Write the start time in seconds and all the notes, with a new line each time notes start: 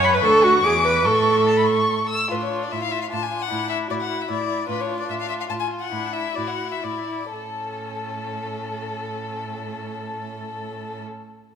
Already playing: F#2 C#5
0.03 B5
0.14 B4
0.22 D2 A4 C#6
0.44 F#4
0.63 E2 G#4 D6
0.85 B4
1.05 A2 A4 C#6
1.47 A5
1.58 B5
1.68 C#6
2.09 E6
2.31 A2 D4 F4 B4
2.41 C#5
2.50 F4
2.63 D5
2.71 A2 E4 F4 E5
2.82 F5
2.91 F4 E5
3.02 F5
3.11 A2 D4 F4 A5
3.22 G#5
3.31 F4
3.42 F#5
3.50 A2 E4
3.69 E4 E5
3.89 A2 E4 F#4 D5
4.01 F#5
4.09 E4
4.21 E5
4.28 A2 E4 D5
4.48 E4
4.68 A2 D4 F4 B4
4.80 C#5
4.88 F4
4.99 D5
5.07 A2 F4 E5
5.20 F5
5.27 F4 E5
5.41 F5
5.48 A2 F4 A5
5.60 G#5
5.70 F4
5.81 F#5
5.92 A2 D4 E4
6.13 E4 E5
6.35 A2 E4 F#4 D5
6.47 F#5
6.60 E4
6.72 E5
6.83 A2 E4 D5
7.08 E4
7.32 A2 C#4 A4